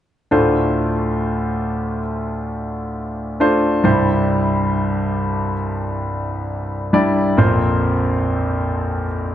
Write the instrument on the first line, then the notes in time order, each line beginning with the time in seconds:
grand piano
0.31 D2 A2 A3 D4 F4 C5
3.40 A3 D4 F4 C5
3.84 C2 G2 G3 D4 E4 C5
6.93 G3 D4 E4 D5
7.37 A#1 F2 A#3 C4 F4 C5